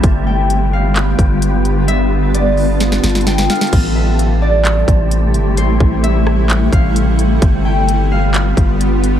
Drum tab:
CC |--------------------------------|--------------------------------|x-------------------------------|--------------------------------|
HH |x-------x-------x---x---x---x---|x-------x---o---x---xxxxx---xxxx|x-------x-------x---x---x---x---|x-------x-------x---x---x---x---|
CP |----------------x---------------|--------------------------------|----------------x---------------|----------------x---------------|
SD |--------------------------------|----------------o-o-o-o-o-o-o-o-|--------------------------------|------------r-------------------|
BD |o-------------------o-----------|--------------------------------|o-------------------o-----------|----o---------------o-----------|

CC |--------------------------------|
HH |x-------x-------x---x---x---x---|
CP |----------------x---------------|
SD |--------------------------------|
BD |o-------------------o-----------|